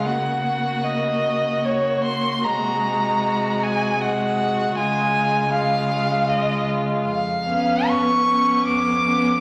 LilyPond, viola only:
\new Staff \with { instrumentName = "Viola" } { \time 3/4 \key des \major \tempo 4 = 77 bes2 bes4 | aes2 aes4 | aes4 aes2 | \key cis \phrygian r8 b4 b4 b8 | }